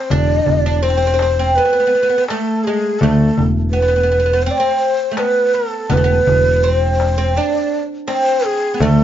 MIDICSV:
0, 0, Header, 1, 5, 480
1, 0, Start_track
1, 0, Tempo, 725514
1, 69, Time_signature, 4, 2, 24, 8
1, 5980, End_track
2, 0, Start_track
2, 0, Title_t, "Ney"
2, 0, Program_c, 0, 77
2, 0, Note_on_c, 0, 72, 98
2, 74, Note_on_c, 0, 74, 105
2, 84, Note_off_c, 0, 72, 0
2, 548, Note_on_c, 0, 72, 95
2, 558, Note_off_c, 0, 74, 0
2, 1031, Note_on_c, 0, 71, 96
2, 1041, Note_off_c, 0, 72, 0
2, 1504, Note_off_c, 0, 71, 0
2, 1508, Note_on_c, 0, 69, 92
2, 1747, Note_on_c, 0, 68, 84
2, 1756, Note_off_c, 0, 69, 0
2, 1981, Note_on_c, 0, 69, 87
2, 1991, Note_off_c, 0, 68, 0
2, 2286, Note_off_c, 0, 69, 0
2, 2453, Note_on_c, 0, 71, 92
2, 2927, Note_on_c, 0, 72, 90
2, 2937, Note_off_c, 0, 71, 0
2, 2983, Note_on_c, 0, 74, 74
2, 2993, Note_off_c, 0, 72, 0
2, 3029, Note_on_c, 0, 72, 96
2, 3039, Note_off_c, 0, 74, 0
2, 3431, Note_on_c, 0, 71, 93
2, 3441, Note_off_c, 0, 72, 0
2, 3669, Note_on_c, 0, 69, 91
2, 3679, Note_off_c, 0, 71, 0
2, 3920, Note_on_c, 0, 71, 95
2, 3930, Note_off_c, 0, 69, 0
2, 4390, Note_off_c, 0, 71, 0
2, 4390, Note_on_c, 0, 71, 90
2, 4463, Note_off_c, 0, 71, 0
2, 4463, Note_on_c, 0, 72, 90
2, 4878, Note_on_c, 0, 74, 97
2, 4888, Note_off_c, 0, 72, 0
2, 5175, Note_off_c, 0, 74, 0
2, 5350, Note_on_c, 0, 72, 94
2, 5595, Note_on_c, 0, 68, 88
2, 5605, Note_off_c, 0, 72, 0
2, 5837, Note_on_c, 0, 69, 97
2, 5847, Note_off_c, 0, 68, 0
2, 5980, Note_off_c, 0, 69, 0
2, 5980, End_track
3, 0, Start_track
3, 0, Title_t, "Oud"
3, 0, Program_c, 1, 24
3, 0, Note_on_c, 1, 60, 73
3, 71, Note_off_c, 1, 60, 0
3, 74, Note_on_c, 1, 62, 77
3, 429, Note_off_c, 1, 62, 0
3, 436, Note_on_c, 1, 62, 75
3, 544, Note_off_c, 1, 62, 0
3, 546, Note_on_c, 1, 60, 73
3, 587, Note_off_c, 1, 60, 0
3, 595, Note_on_c, 1, 60, 47
3, 637, Note_off_c, 1, 60, 0
3, 645, Note_on_c, 1, 60, 54
3, 698, Note_off_c, 1, 60, 0
3, 707, Note_on_c, 1, 60, 53
3, 745, Note_off_c, 1, 60, 0
3, 753, Note_on_c, 1, 60, 60
3, 802, Note_off_c, 1, 60, 0
3, 809, Note_on_c, 1, 60, 52
3, 855, Note_off_c, 1, 60, 0
3, 922, Note_on_c, 1, 60, 78
3, 1039, Note_off_c, 1, 60, 0
3, 1044, Note_on_c, 1, 59, 67
3, 1084, Note_off_c, 1, 59, 0
3, 1092, Note_on_c, 1, 59, 51
3, 1135, Note_off_c, 1, 59, 0
3, 1143, Note_on_c, 1, 59, 56
3, 1182, Note_off_c, 1, 59, 0
3, 1190, Note_on_c, 1, 59, 44
3, 1228, Note_off_c, 1, 59, 0
3, 1236, Note_on_c, 1, 59, 51
3, 1281, Note_off_c, 1, 59, 0
3, 1289, Note_on_c, 1, 59, 44
3, 1335, Note_off_c, 1, 59, 0
3, 1342, Note_on_c, 1, 59, 53
3, 1378, Note_off_c, 1, 59, 0
3, 1386, Note_on_c, 1, 59, 47
3, 1433, Note_off_c, 1, 59, 0
3, 1442, Note_on_c, 1, 59, 56
3, 1486, Note_off_c, 1, 59, 0
3, 1523, Note_on_c, 1, 57, 78
3, 1764, Note_off_c, 1, 57, 0
3, 1767, Note_on_c, 1, 56, 71
3, 2003, Note_off_c, 1, 56, 0
3, 2005, Note_on_c, 1, 57, 70
3, 2278, Note_off_c, 1, 57, 0
3, 2468, Note_on_c, 1, 59, 65
3, 2520, Note_off_c, 1, 59, 0
3, 2528, Note_on_c, 1, 59, 45
3, 2560, Note_off_c, 1, 59, 0
3, 2568, Note_on_c, 1, 59, 50
3, 2612, Note_off_c, 1, 59, 0
3, 2620, Note_on_c, 1, 59, 44
3, 2660, Note_off_c, 1, 59, 0
3, 2668, Note_on_c, 1, 59, 53
3, 2715, Note_off_c, 1, 59, 0
3, 2723, Note_on_c, 1, 59, 46
3, 2768, Note_off_c, 1, 59, 0
3, 2776, Note_on_c, 1, 59, 50
3, 2808, Note_off_c, 1, 59, 0
3, 2816, Note_on_c, 1, 59, 47
3, 2859, Note_off_c, 1, 59, 0
3, 2867, Note_on_c, 1, 59, 64
3, 2919, Note_off_c, 1, 59, 0
3, 2953, Note_on_c, 1, 60, 75
3, 3034, Note_off_c, 1, 60, 0
3, 3042, Note_on_c, 1, 60, 75
3, 3360, Note_off_c, 1, 60, 0
3, 3384, Note_on_c, 1, 57, 54
3, 3420, Note_off_c, 1, 57, 0
3, 3422, Note_on_c, 1, 59, 74
3, 3893, Note_off_c, 1, 59, 0
3, 3901, Note_on_c, 1, 59, 75
3, 3947, Note_off_c, 1, 59, 0
3, 3950, Note_on_c, 1, 57, 62
3, 3994, Note_off_c, 1, 57, 0
3, 3996, Note_on_c, 1, 59, 75
3, 4392, Note_on_c, 1, 60, 69
3, 4399, Note_off_c, 1, 59, 0
3, 4742, Note_off_c, 1, 60, 0
3, 4749, Note_on_c, 1, 60, 72
3, 4874, Note_off_c, 1, 60, 0
3, 4877, Note_on_c, 1, 62, 75
3, 5154, Note_off_c, 1, 62, 0
3, 5343, Note_on_c, 1, 60, 73
3, 5783, Note_on_c, 1, 59, 55
3, 5793, Note_off_c, 1, 60, 0
3, 5830, Note_off_c, 1, 59, 0
3, 5837, Note_on_c, 1, 57, 76
3, 5980, Note_off_c, 1, 57, 0
3, 5980, End_track
4, 0, Start_track
4, 0, Title_t, "Picked electric bass"
4, 0, Program_c, 2, 34
4, 74, Note_on_c, 2, 28, 97
4, 255, Note_off_c, 2, 28, 0
4, 316, Note_on_c, 2, 28, 77
4, 1047, Note_off_c, 2, 28, 0
4, 1998, Note_on_c, 2, 38, 84
4, 2179, Note_off_c, 2, 38, 0
4, 2239, Note_on_c, 2, 28, 75
4, 2970, Note_off_c, 2, 28, 0
4, 3915, Note_on_c, 2, 28, 100
4, 4097, Note_off_c, 2, 28, 0
4, 4151, Note_on_c, 2, 28, 92
4, 4884, Note_off_c, 2, 28, 0
4, 5825, Note_on_c, 2, 38, 90
4, 5980, Note_off_c, 2, 38, 0
4, 5980, End_track
5, 0, Start_track
5, 0, Title_t, "Darbuka"
5, 68, Note_on_c, 9, 64, 86
5, 134, Note_off_c, 9, 64, 0
5, 306, Note_on_c, 9, 64, 79
5, 372, Note_off_c, 9, 64, 0
5, 788, Note_on_c, 9, 63, 69
5, 854, Note_off_c, 9, 63, 0
5, 1145, Note_on_c, 9, 62, 22
5, 1211, Note_off_c, 9, 62, 0
5, 1512, Note_on_c, 9, 63, 75
5, 1578, Note_off_c, 9, 63, 0
5, 1753, Note_on_c, 9, 62, 26
5, 1819, Note_off_c, 9, 62, 0
5, 1991, Note_on_c, 9, 64, 92
5, 2057, Note_off_c, 9, 64, 0
5, 2233, Note_on_c, 9, 64, 78
5, 2300, Note_off_c, 9, 64, 0
5, 2473, Note_on_c, 9, 62, 22
5, 2539, Note_off_c, 9, 62, 0
5, 3064, Note_on_c, 9, 62, 26
5, 3130, Note_off_c, 9, 62, 0
5, 3421, Note_on_c, 9, 63, 73
5, 3487, Note_off_c, 9, 63, 0
5, 3666, Note_on_c, 9, 62, 26
5, 3732, Note_off_c, 9, 62, 0
5, 3901, Note_on_c, 9, 64, 91
5, 3967, Note_off_c, 9, 64, 0
5, 4148, Note_on_c, 9, 64, 85
5, 4214, Note_off_c, 9, 64, 0
5, 4387, Note_on_c, 9, 62, 25
5, 4453, Note_off_c, 9, 62, 0
5, 4630, Note_on_c, 9, 63, 62
5, 4697, Note_off_c, 9, 63, 0
5, 4987, Note_on_c, 9, 62, 26
5, 5053, Note_off_c, 9, 62, 0
5, 5346, Note_on_c, 9, 63, 58
5, 5412, Note_off_c, 9, 63, 0
5, 5590, Note_on_c, 9, 62, 30
5, 5656, Note_off_c, 9, 62, 0
5, 5828, Note_on_c, 9, 64, 94
5, 5894, Note_off_c, 9, 64, 0
5, 5947, Note_on_c, 9, 62, 31
5, 5980, Note_off_c, 9, 62, 0
5, 5980, End_track
0, 0, End_of_file